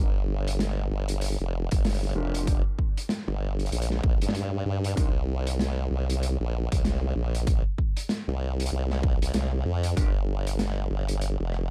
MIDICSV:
0, 0, Header, 1, 4, 480
1, 0, Start_track
1, 0, Key_signature, -2, "minor"
1, 0, Tempo, 625000
1, 1898, Time_signature, 4, 2, 24, 8
1, 8992, End_track
2, 0, Start_track
2, 0, Title_t, "Clean electric guitar"
2, 0, Program_c, 0, 27
2, 1653, Note_on_c, 0, 67, 75
2, 1657, Note_on_c, 0, 70, 87
2, 1660, Note_on_c, 0, 65, 68
2, 1663, Note_on_c, 0, 62, 81
2, 1874, Note_off_c, 0, 62, 0
2, 1874, Note_off_c, 0, 65, 0
2, 1874, Note_off_c, 0, 67, 0
2, 1874, Note_off_c, 0, 70, 0
2, 1893, Note_on_c, 0, 62, 73
2, 1897, Note_on_c, 0, 65, 61
2, 1900, Note_on_c, 0, 67, 68
2, 1903, Note_on_c, 0, 74, 77
2, 1982, Note_off_c, 0, 62, 0
2, 1982, Note_off_c, 0, 74, 0
2, 1983, Note_off_c, 0, 65, 0
2, 1983, Note_off_c, 0, 67, 0
2, 3808, Note_on_c, 0, 62, 73
2, 3814, Note_on_c, 0, 63, 72
2, 3816, Note_on_c, 0, 70, 74
2, 3819, Note_on_c, 0, 65, 64
2, 3900, Note_off_c, 0, 62, 0
2, 3900, Note_off_c, 0, 65, 0
2, 3901, Note_off_c, 0, 63, 0
2, 3901, Note_off_c, 0, 70, 0
2, 7654, Note_on_c, 0, 62, 75
2, 7656, Note_on_c, 0, 65, 56
2, 7659, Note_on_c, 0, 70, 78
2, 7663, Note_on_c, 0, 67, 65
2, 7742, Note_off_c, 0, 62, 0
2, 7742, Note_off_c, 0, 65, 0
2, 7742, Note_off_c, 0, 70, 0
2, 7743, Note_off_c, 0, 67, 0
2, 8992, End_track
3, 0, Start_track
3, 0, Title_t, "Wobble bass"
3, 0, Program_c, 1, 39
3, 0, Note_on_c, 1, 31, 99
3, 683, Note_off_c, 1, 31, 0
3, 696, Note_on_c, 1, 31, 95
3, 1057, Note_off_c, 1, 31, 0
3, 1078, Note_on_c, 1, 29, 99
3, 1296, Note_off_c, 1, 29, 0
3, 1321, Note_on_c, 1, 31, 93
3, 1643, Note_off_c, 1, 31, 0
3, 1653, Note_on_c, 1, 29, 95
3, 2015, Note_off_c, 1, 29, 0
3, 2518, Note_on_c, 1, 31, 96
3, 2841, Note_off_c, 1, 31, 0
3, 2857, Note_on_c, 1, 34, 97
3, 3082, Note_off_c, 1, 34, 0
3, 3099, Note_on_c, 1, 34, 92
3, 3218, Note_off_c, 1, 34, 0
3, 3242, Note_on_c, 1, 43, 96
3, 3564, Note_off_c, 1, 43, 0
3, 3577, Note_on_c, 1, 43, 95
3, 3802, Note_off_c, 1, 43, 0
3, 3819, Note_on_c, 1, 36, 105
3, 4523, Note_off_c, 1, 36, 0
3, 4537, Note_on_c, 1, 36, 102
3, 4897, Note_off_c, 1, 36, 0
3, 4917, Note_on_c, 1, 34, 90
3, 5136, Note_off_c, 1, 34, 0
3, 5160, Note_on_c, 1, 36, 97
3, 5482, Note_off_c, 1, 36, 0
3, 5496, Note_on_c, 1, 34, 99
3, 5857, Note_off_c, 1, 34, 0
3, 6359, Note_on_c, 1, 36, 96
3, 6682, Note_off_c, 1, 36, 0
3, 6698, Note_on_c, 1, 36, 101
3, 7058, Note_off_c, 1, 36, 0
3, 7080, Note_on_c, 1, 36, 93
3, 7162, Note_off_c, 1, 36, 0
3, 7176, Note_on_c, 1, 36, 97
3, 7402, Note_off_c, 1, 36, 0
3, 7414, Note_on_c, 1, 41, 100
3, 7641, Note_off_c, 1, 41, 0
3, 7656, Note_on_c, 1, 31, 99
3, 8362, Note_off_c, 1, 31, 0
3, 8375, Note_on_c, 1, 31, 98
3, 8736, Note_off_c, 1, 31, 0
3, 8756, Note_on_c, 1, 29, 90
3, 8976, Note_off_c, 1, 29, 0
3, 8992, End_track
4, 0, Start_track
4, 0, Title_t, "Drums"
4, 365, Note_on_c, 9, 42, 81
4, 442, Note_off_c, 9, 42, 0
4, 455, Note_on_c, 9, 38, 109
4, 462, Note_on_c, 9, 42, 68
4, 532, Note_off_c, 9, 38, 0
4, 538, Note_off_c, 9, 42, 0
4, 833, Note_on_c, 9, 42, 69
4, 909, Note_off_c, 9, 42, 0
4, 932, Note_on_c, 9, 42, 60
4, 956, Note_off_c, 9, 42, 0
4, 956, Note_on_c, 9, 42, 49
4, 983, Note_off_c, 9, 42, 0
4, 983, Note_on_c, 9, 42, 40
4, 1007, Note_off_c, 9, 42, 0
4, 1007, Note_on_c, 9, 42, 32
4, 1017, Note_off_c, 9, 42, 0
4, 1017, Note_on_c, 9, 42, 28
4, 1055, Note_off_c, 9, 42, 0
4, 1055, Note_on_c, 9, 42, 22
4, 1132, Note_off_c, 9, 42, 0
4, 1316, Note_on_c, 9, 42, 68
4, 1320, Note_on_c, 9, 36, 99
4, 1393, Note_off_c, 9, 42, 0
4, 1397, Note_off_c, 9, 36, 0
4, 1418, Note_on_c, 9, 42, 63
4, 1421, Note_on_c, 9, 38, 114
4, 1456, Note_off_c, 9, 42, 0
4, 1456, Note_on_c, 9, 42, 52
4, 1491, Note_off_c, 9, 42, 0
4, 1491, Note_on_c, 9, 42, 43
4, 1497, Note_off_c, 9, 38, 0
4, 1526, Note_off_c, 9, 42, 0
4, 1526, Note_on_c, 9, 42, 33
4, 1561, Note_off_c, 9, 42, 0
4, 1561, Note_on_c, 9, 42, 29
4, 1584, Note_off_c, 9, 42, 0
4, 1584, Note_on_c, 9, 42, 23
4, 1609, Note_off_c, 9, 42, 0
4, 1609, Note_on_c, 9, 42, 19
4, 1634, Note_off_c, 9, 42, 0
4, 1634, Note_on_c, 9, 42, 15
4, 1711, Note_off_c, 9, 42, 0
4, 1801, Note_on_c, 9, 42, 70
4, 1878, Note_off_c, 9, 42, 0
4, 1899, Note_on_c, 9, 36, 122
4, 1899, Note_on_c, 9, 42, 68
4, 1976, Note_off_c, 9, 36, 0
4, 1976, Note_off_c, 9, 42, 0
4, 2139, Note_on_c, 9, 36, 59
4, 2216, Note_off_c, 9, 36, 0
4, 2285, Note_on_c, 9, 42, 76
4, 2362, Note_off_c, 9, 42, 0
4, 2374, Note_on_c, 9, 38, 118
4, 2380, Note_on_c, 9, 42, 60
4, 2451, Note_off_c, 9, 38, 0
4, 2457, Note_off_c, 9, 42, 0
4, 2760, Note_on_c, 9, 42, 34
4, 2811, Note_off_c, 9, 42, 0
4, 2811, Note_on_c, 9, 42, 41
4, 2859, Note_off_c, 9, 42, 0
4, 2859, Note_on_c, 9, 42, 64
4, 2932, Note_off_c, 9, 42, 0
4, 2932, Note_on_c, 9, 42, 62
4, 2995, Note_on_c, 9, 38, 37
4, 3009, Note_off_c, 9, 42, 0
4, 3072, Note_off_c, 9, 38, 0
4, 3099, Note_on_c, 9, 36, 110
4, 3176, Note_off_c, 9, 36, 0
4, 3237, Note_on_c, 9, 42, 78
4, 3291, Note_on_c, 9, 38, 114
4, 3314, Note_off_c, 9, 42, 0
4, 3338, Note_on_c, 9, 42, 71
4, 3368, Note_off_c, 9, 38, 0
4, 3415, Note_off_c, 9, 42, 0
4, 3720, Note_on_c, 9, 42, 72
4, 3797, Note_off_c, 9, 42, 0
4, 3818, Note_on_c, 9, 36, 118
4, 3818, Note_on_c, 9, 42, 68
4, 3895, Note_off_c, 9, 36, 0
4, 3895, Note_off_c, 9, 42, 0
4, 4200, Note_on_c, 9, 42, 78
4, 4276, Note_off_c, 9, 42, 0
4, 4297, Note_on_c, 9, 38, 121
4, 4303, Note_on_c, 9, 42, 60
4, 4374, Note_off_c, 9, 38, 0
4, 4380, Note_off_c, 9, 42, 0
4, 4682, Note_on_c, 9, 42, 71
4, 4759, Note_off_c, 9, 42, 0
4, 4784, Note_on_c, 9, 42, 65
4, 4860, Note_off_c, 9, 42, 0
4, 5161, Note_on_c, 9, 36, 109
4, 5162, Note_on_c, 9, 42, 83
4, 5238, Note_off_c, 9, 36, 0
4, 5239, Note_off_c, 9, 42, 0
4, 5259, Note_on_c, 9, 38, 127
4, 5259, Note_on_c, 9, 42, 64
4, 5336, Note_off_c, 9, 38, 0
4, 5336, Note_off_c, 9, 42, 0
4, 5642, Note_on_c, 9, 42, 68
4, 5719, Note_off_c, 9, 42, 0
4, 5737, Note_on_c, 9, 42, 67
4, 5738, Note_on_c, 9, 36, 121
4, 5814, Note_off_c, 9, 42, 0
4, 5815, Note_off_c, 9, 36, 0
4, 5978, Note_on_c, 9, 36, 60
4, 6055, Note_off_c, 9, 36, 0
4, 6118, Note_on_c, 9, 42, 73
4, 6195, Note_off_c, 9, 42, 0
4, 6215, Note_on_c, 9, 38, 110
4, 6218, Note_on_c, 9, 42, 53
4, 6292, Note_off_c, 9, 38, 0
4, 6295, Note_off_c, 9, 42, 0
4, 6604, Note_on_c, 9, 42, 73
4, 6651, Note_off_c, 9, 42, 0
4, 6651, Note_on_c, 9, 42, 65
4, 6727, Note_off_c, 9, 42, 0
4, 6834, Note_on_c, 9, 38, 37
4, 6911, Note_off_c, 9, 38, 0
4, 6938, Note_on_c, 9, 36, 103
4, 7015, Note_off_c, 9, 36, 0
4, 7083, Note_on_c, 9, 42, 72
4, 7160, Note_off_c, 9, 42, 0
4, 7171, Note_on_c, 9, 42, 66
4, 7176, Note_on_c, 9, 38, 110
4, 7248, Note_off_c, 9, 42, 0
4, 7253, Note_off_c, 9, 38, 0
4, 7552, Note_on_c, 9, 42, 73
4, 7629, Note_off_c, 9, 42, 0
4, 7657, Note_on_c, 9, 36, 117
4, 7660, Note_on_c, 9, 42, 66
4, 7734, Note_off_c, 9, 36, 0
4, 7737, Note_off_c, 9, 42, 0
4, 8039, Note_on_c, 9, 42, 69
4, 8116, Note_off_c, 9, 42, 0
4, 8133, Note_on_c, 9, 38, 115
4, 8134, Note_on_c, 9, 42, 64
4, 8210, Note_off_c, 9, 38, 0
4, 8211, Note_off_c, 9, 42, 0
4, 8514, Note_on_c, 9, 42, 68
4, 8590, Note_off_c, 9, 42, 0
4, 8612, Note_on_c, 9, 42, 64
4, 8689, Note_off_c, 9, 42, 0
4, 8851, Note_on_c, 9, 37, 34
4, 8928, Note_off_c, 9, 37, 0
4, 8992, End_track
0, 0, End_of_file